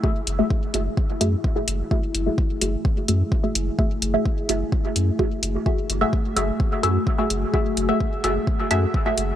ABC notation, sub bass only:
X:1
M:4/4
L:1/8
Q:1/4=128
K:F#m
V:1 name="Sub bass" clef=bass
z F,,, z F,,, z F,, z F,,, | z F,,, z F,,, z F,, z F,,, | z F,,, z F,,, z F,, z F,,, | z F,,, z F,,, z F,, z F,,, |
z F,,, z F,,, z F,, z F,,, |]